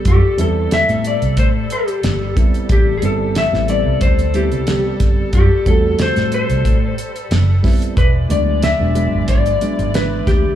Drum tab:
HH |x-x-xxxxx-xxx-xx|x-x-x-x-xxxxx-x-|x-x-xxxxx-xxx-ox|x-x-x-x-xxxxx-x-|
SD |----o-------o---|----oo------o-o-|----oo------o-o-|----o-------o-o-|
BD |o-------o-----o-|o-------o-----o-|o-o-----o-----o-|o-------o-----o-|